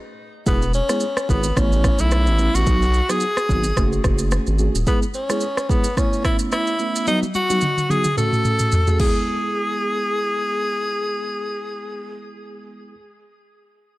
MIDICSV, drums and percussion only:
0, 0, Header, 1, 2, 480
1, 0, Start_track
1, 0, Key_signature, 4, "major"
1, 0, Tempo, 550459
1, 405, Time_signature, 4, 2, 24, 8
1, 12191, End_track
2, 0, Start_track
2, 0, Title_t, "Drums"
2, 404, Note_on_c, 9, 82, 71
2, 405, Note_on_c, 9, 36, 110
2, 491, Note_off_c, 9, 82, 0
2, 492, Note_off_c, 9, 36, 0
2, 542, Note_on_c, 9, 82, 50
2, 630, Note_off_c, 9, 82, 0
2, 642, Note_on_c, 9, 82, 55
2, 729, Note_off_c, 9, 82, 0
2, 778, Note_on_c, 9, 37, 77
2, 779, Note_on_c, 9, 82, 94
2, 865, Note_off_c, 9, 37, 0
2, 866, Note_off_c, 9, 82, 0
2, 874, Note_on_c, 9, 82, 71
2, 961, Note_off_c, 9, 82, 0
2, 1018, Note_on_c, 9, 37, 87
2, 1022, Note_on_c, 9, 82, 52
2, 1106, Note_off_c, 9, 37, 0
2, 1109, Note_off_c, 9, 82, 0
2, 1125, Note_on_c, 9, 36, 86
2, 1134, Note_on_c, 9, 82, 52
2, 1212, Note_off_c, 9, 36, 0
2, 1221, Note_off_c, 9, 82, 0
2, 1251, Note_on_c, 9, 82, 96
2, 1338, Note_off_c, 9, 82, 0
2, 1365, Note_on_c, 9, 36, 91
2, 1368, Note_on_c, 9, 37, 91
2, 1369, Note_on_c, 9, 82, 69
2, 1452, Note_off_c, 9, 36, 0
2, 1455, Note_off_c, 9, 37, 0
2, 1457, Note_off_c, 9, 82, 0
2, 1504, Note_on_c, 9, 82, 43
2, 1591, Note_off_c, 9, 82, 0
2, 1605, Note_on_c, 9, 36, 96
2, 1605, Note_on_c, 9, 37, 92
2, 1605, Note_on_c, 9, 82, 56
2, 1692, Note_off_c, 9, 36, 0
2, 1692, Note_off_c, 9, 37, 0
2, 1693, Note_off_c, 9, 82, 0
2, 1731, Note_on_c, 9, 82, 108
2, 1818, Note_off_c, 9, 82, 0
2, 1841, Note_on_c, 9, 82, 70
2, 1848, Note_on_c, 9, 37, 89
2, 1928, Note_off_c, 9, 82, 0
2, 1935, Note_off_c, 9, 37, 0
2, 1976, Note_on_c, 9, 82, 45
2, 2063, Note_off_c, 9, 82, 0
2, 2080, Note_on_c, 9, 82, 50
2, 2168, Note_off_c, 9, 82, 0
2, 2225, Note_on_c, 9, 82, 110
2, 2312, Note_off_c, 9, 82, 0
2, 2324, Note_on_c, 9, 82, 72
2, 2325, Note_on_c, 9, 36, 107
2, 2411, Note_off_c, 9, 82, 0
2, 2412, Note_off_c, 9, 36, 0
2, 2462, Note_on_c, 9, 82, 46
2, 2550, Note_off_c, 9, 82, 0
2, 2561, Note_on_c, 9, 82, 53
2, 2648, Note_off_c, 9, 82, 0
2, 2698, Note_on_c, 9, 37, 77
2, 2699, Note_on_c, 9, 82, 91
2, 2785, Note_off_c, 9, 37, 0
2, 2786, Note_off_c, 9, 82, 0
2, 2793, Note_on_c, 9, 82, 74
2, 2880, Note_off_c, 9, 82, 0
2, 2938, Note_on_c, 9, 37, 89
2, 2941, Note_on_c, 9, 82, 57
2, 3025, Note_off_c, 9, 37, 0
2, 3029, Note_off_c, 9, 82, 0
2, 3044, Note_on_c, 9, 36, 82
2, 3054, Note_on_c, 9, 82, 50
2, 3132, Note_off_c, 9, 36, 0
2, 3141, Note_off_c, 9, 82, 0
2, 3172, Note_on_c, 9, 82, 97
2, 3259, Note_off_c, 9, 82, 0
2, 3285, Note_on_c, 9, 36, 90
2, 3287, Note_on_c, 9, 37, 92
2, 3289, Note_on_c, 9, 82, 71
2, 3372, Note_off_c, 9, 36, 0
2, 3375, Note_off_c, 9, 37, 0
2, 3376, Note_off_c, 9, 82, 0
2, 3424, Note_on_c, 9, 82, 44
2, 3511, Note_off_c, 9, 82, 0
2, 3524, Note_on_c, 9, 36, 93
2, 3524, Note_on_c, 9, 37, 95
2, 3524, Note_on_c, 9, 82, 52
2, 3611, Note_off_c, 9, 37, 0
2, 3612, Note_off_c, 9, 36, 0
2, 3612, Note_off_c, 9, 82, 0
2, 3650, Note_on_c, 9, 82, 109
2, 3737, Note_off_c, 9, 82, 0
2, 3760, Note_on_c, 9, 82, 74
2, 3767, Note_on_c, 9, 37, 87
2, 3847, Note_off_c, 9, 82, 0
2, 3854, Note_off_c, 9, 37, 0
2, 3895, Note_on_c, 9, 82, 45
2, 3982, Note_off_c, 9, 82, 0
2, 3999, Note_on_c, 9, 82, 50
2, 4086, Note_off_c, 9, 82, 0
2, 4145, Note_on_c, 9, 82, 106
2, 4232, Note_off_c, 9, 82, 0
2, 4244, Note_on_c, 9, 82, 69
2, 4245, Note_on_c, 9, 36, 106
2, 4331, Note_off_c, 9, 82, 0
2, 4332, Note_off_c, 9, 36, 0
2, 4382, Note_on_c, 9, 82, 49
2, 4469, Note_off_c, 9, 82, 0
2, 4481, Note_on_c, 9, 82, 54
2, 4568, Note_off_c, 9, 82, 0
2, 4618, Note_on_c, 9, 37, 81
2, 4619, Note_on_c, 9, 82, 90
2, 4705, Note_off_c, 9, 37, 0
2, 4706, Note_off_c, 9, 82, 0
2, 4714, Note_on_c, 9, 82, 72
2, 4801, Note_off_c, 9, 82, 0
2, 4859, Note_on_c, 9, 37, 87
2, 4863, Note_on_c, 9, 82, 53
2, 4946, Note_off_c, 9, 37, 0
2, 4950, Note_off_c, 9, 82, 0
2, 4965, Note_on_c, 9, 36, 79
2, 4975, Note_on_c, 9, 82, 50
2, 5052, Note_off_c, 9, 36, 0
2, 5063, Note_off_c, 9, 82, 0
2, 5093, Note_on_c, 9, 82, 94
2, 5181, Note_off_c, 9, 82, 0
2, 5206, Note_on_c, 9, 36, 90
2, 5209, Note_on_c, 9, 37, 91
2, 5211, Note_on_c, 9, 82, 70
2, 5293, Note_off_c, 9, 36, 0
2, 5296, Note_off_c, 9, 37, 0
2, 5298, Note_off_c, 9, 82, 0
2, 5346, Note_on_c, 9, 82, 42
2, 5433, Note_off_c, 9, 82, 0
2, 5446, Note_on_c, 9, 36, 94
2, 5446, Note_on_c, 9, 37, 96
2, 5446, Note_on_c, 9, 82, 54
2, 5533, Note_off_c, 9, 36, 0
2, 5533, Note_off_c, 9, 37, 0
2, 5534, Note_off_c, 9, 82, 0
2, 5573, Note_on_c, 9, 82, 106
2, 5660, Note_off_c, 9, 82, 0
2, 5683, Note_on_c, 9, 82, 69
2, 5690, Note_on_c, 9, 37, 84
2, 5770, Note_off_c, 9, 82, 0
2, 5777, Note_off_c, 9, 37, 0
2, 5817, Note_on_c, 9, 82, 45
2, 5904, Note_off_c, 9, 82, 0
2, 5922, Note_on_c, 9, 82, 51
2, 6009, Note_off_c, 9, 82, 0
2, 6066, Note_on_c, 9, 82, 104
2, 6154, Note_off_c, 9, 82, 0
2, 6165, Note_on_c, 9, 82, 69
2, 6166, Note_on_c, 9, 48, 54
2, 6252, Note_off_c, 9, 82, 0
2, 6253, Note_off_c, 9, 48, 0
2, 6298, Note_on_c, 9, 48, 46
2, 6304, Note_on_c, 9, 82, 46
2, 6385, Note_off_c, 9, 48, 0
2, 6391, Note_off_c, 9, 82, 0
2, 6403, Note_on_c, 9, 82, 50
2, 6406, Note_on_c, 9, 48, 56
2, 6490, Note_off_c, 9, 82, 0
2, 6493, Note_off_c, 9, 48, 0
2, 6538, Note_on_c, 9, 48, 52
2, 6541, Note_on_c, 9, 82, 91
2, 6625, Note_off_c, 9, 48, 0
2, 6628, Note_off_c, 9, 82, 0
2, 6635, Note_on_c, 9, 82, 70
2, 6646, Note_on_c, 9, 47, 66
2, 6723, Note_off_c, 9, 82, 0
2, 6733, Note_off_c, 9, 47, 0
2, 6778, Note_on_c, 9, 47, 58
2, 6783, Note_on_c, 9, 82, 54
2, 6865, Note_off_c, 9, 47, 0
2, 6871, Note_off_c, 9, 82, 0
2, 6886, Note_on_c, 9, 47, 70
2, 6896, Note_on_c, 9, 82, 49
2, 6973, Note_off_c, 9, 47, 0
2, 6983, Note_off_c, 9, 82, 0
2, 7013, Note_on_c, 9, 82, 95
2, 7017, Note_on_c, 9, 47, 65
2, 7100, Note_off_c, 9, 82, 0
2, 7104, Note_off_c, 9, 47, 0
2, 7126, Note_on_c, 9, 45, 76
2, 7132, Note_on_c, 9, 82, 70
2, 7213, Note_off_c, 9, 45, 0
2, 7219, Note_off_c, 9, 82, 0
2, 7258, Note_on_c, 9, 45, 69
2, 7266, Note_on_c, 9, 82, 41
2, 7346, Note_off_c, 9, 45, 0
2, 7354, Note_off_c, 9, 82, 0
2, 7365, Note_on_c, 9, 45, 82
2, 7367, Note_on_c, 9, 82, 52
2, 7452, Note_off_c, 9, 45, 0
2, 7454, Note_off_c, 9, 82, 0
2, 7492, Note_on_c, 9, 82, 112
2, 7497, Note_on_c, 9, 45, 75
2, 7579, Note_off_c, 9, 82, 0
2, 7584, Note_off_c, 9, 45, 0
2, 7603, Note_on_c, 9, 82, 70
2, 7606, Note_on_c, 9, 43, 88
2, 7690, Note_off_c, 9, 82, 0
2, 7693, Note_off_c, 9, 43, 0
2, 7736, Note_on_c, 9, 82, 42
2, 7737, Note_on_c, 9, 43, 79
2, 7824, Note_off_c, 9, 82, 0
2, 7825, Note_off_c, 9, 43, 0
2, 7845, Note_on_c, 9, 36, 104
2, 7845, Note_on_c, 9, 49, 83
2, 7932, Note_off_c, 9, 36, 0
2, 7932, Note_off_c, 9, 49, 0
2, 12191, End_track
0, 0, End_of_file